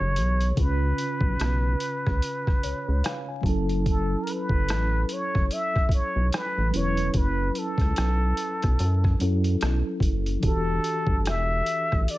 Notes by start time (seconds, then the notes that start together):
Already playing: E3 D4 F#4 G4 A4 C#5
0.00 F#1
0.16 B1, closed hi-hat
0.41 closed hi-hat
0.54 C#2 C#3 C#4, kick, closed hi-hat
0.59 F4 B4
0.98 closed hi-hat
1.21 B1, kick
1.40 B1, cross-stick, closed hi-hat
1.80 closed hi-hat
2.07 C#2, kick, cross-stick
2.22 closed hi-hat
2.47 kick, cross-stick
2.63 C#2 C#5, closed hi-hat
2.88 C#2
3.04 F5, cross-stick, closed hi-hat
3.28 G#5
3.41 F#1 F#3 C#4 A5, kick
3.46 E4 A4, closed hi-hat
3.69 closed hi-hat
3.86 A4, kick, closed hi-hat
4.23 A#4, closed hi-hat
4.30 B4
4.49 F#1, kick
4.69 A1, cross-stick, closed hi-hat
5.09 C#5, closed hi-hat
5.35 F#1, kick, cross-stick
5.51 E5, closed hi-hat
5.76 kick, cross-stick
5.89 B1, kick, closed hi-hat
5.94 C#5
6.16 B1
6.32 B4, cross-stick, closed hi-hat
6.58 A1
6.70 F#3 C#4, closed hi-hat
6.75 E1 E4 B4 C#5
6.97 closed hi-hat
7.14 F#1 B4, kick, closed hi-hat
7.55 A4, closed hi-hat
7.78 C#2, kick, cross-stick, closed hi-hat
7.96 B1, cross-stick, closed hi-hat
8.37 closed hi-hat
8.62 B1, kick, cross-stick, closed hi-hat
8.79 F#2, closed hi-hat
9.04 kick, cross-stick
9.19 F#2 F#3 C#4 E4, closed hi-hat
9.23 A4
9.44 closed hi-hat
9.61 B1, cross-stick, closed hi-hat
10.00 F#1, kick, closed hi-hat
10.26 closed hi-hat
10.40 E3 D4 F#4, kick, closed hi-hat
10.44 E1 G4 A4
10.84 closed hi-hat
11.07 G1, kick
11.25 E1 E5, cross-stick, closed hi-hat
11.66 closed hi-hat
11.92 A1, kick, cross-stick
12.08 D5, closed hi-hat